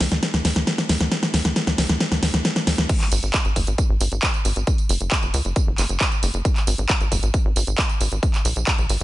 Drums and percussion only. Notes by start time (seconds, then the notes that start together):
0.01 snare, open hi-hat
0.12 snare, closed hi-hat
0.23 snare, closed hi-hat
0.34 snare, closed hi-hat
0.45 snare, open hi-hat
0.56 snare, closed hi-hat
0.67 snare, closed hi-hat
0.78 snare, closed hi-hat
0.89 snare, open hi-hat
1.01 snare, closed hi-hat
1.12 snare, closed hi-hat
1.23 snare, closed hi-hat
1.34 snare, open hi-hat
1.45 snare, closed hi-hat
1.56 snare, closed hi-hat
1.67 snare, closed hi-hat
1.78 snare, open hi-hat
1.89 snare, closed hi-hat
2.00 snare, closed hi-hat
2.12 snare, closed hi-hat
2.23 snare, open hi-hat
2.34 snare, closed hi-hat
2.45 snare, closed hi-hat
2.56 snare, closed hi-hat
2.67 snare, open hi-hat
2.78 snare, closed hi-hat
2.89 kick, closed hi-hat, crash, tambourine
3.01 clap, closed hi-hat, tambourine
3.12 open hi-hat, tambourine
3.23 closed hi-hat, tambourine
3.34 kick, clap, closed hi-hat, tambourine
3.45 closed hi-hat, tambourine
3.56 kick, open hi-hat, tambourine
3.67 closed hi-hat, tambourine
3.78 kick, closed hi-hat, tambourine
4.01 open hi-hat, tambourine
4.12 closed hi-hat, tambourine
4.23 kick, clap, closed hi-hat, tambourine
4.34 closed hi-hat, tambourine
4.45 open hi-hat, tambourine
4.56 closed hi-hat, tambourine
4.67 kick, closed hi-hat, tambourine
4.78 closed hi-hat, tambourine
4.89 open hi-hat, tambourine
5.00 closed hi-hat, tambourine
5.12 kick, clap, closed hi-hat, tambourine
5.23 closed hi-hat, tambourine
5.34 open hi-hat, tambourine
5.45 closed hi-hat, tambourine
5.56 kick, closed hi-hat, tambourine
5.78 clap, open hi-hat, tambourine
5.89 closed hi-hat, tambourine
6.01 kick, clap, closed hi-hat, tambourine
6.12 closed hi-hat, tambourine
6.23 open hi-hat, tambourine
6.34 closed hi-hat, tambourine
6.45 kick, closed hi-hat, tambourine
6.56 clap, closed hi-hat, tambourine
6.67 open hi-hat, tambourine
6.78 closed hi-hat, tambourine
6.89 kick, clap, closed hi-hat, tambourine
7.01 closed hi-hat, tambourine
7.12 kick, open hi-hat, tambourine
7.23 closed hi-hat, tambourine
7.34 kick, closed hi-hat, tambourine
7.56 open hi-hat, tambourine
7.67 closed hi-hat, tambourine
7.78 kick, clap, closed hi-hat, tambourine
7.90 closed hi-hat, tambourine
8.01 open hi-hat, tambourine
8.12 closed hi-hat, tambourine
8.23 kick, closed hi-hat, tambourine
8.34 clap, closed hi-hat, tambourine
8.45 open hi-hat, tambourine
8.56 closed hi-hat, tambourine
8.67 kick, clap, closed hi-hat, tambourine
8.78 closed hi-hat, tambourine
8.89 open hi-hat, tambourine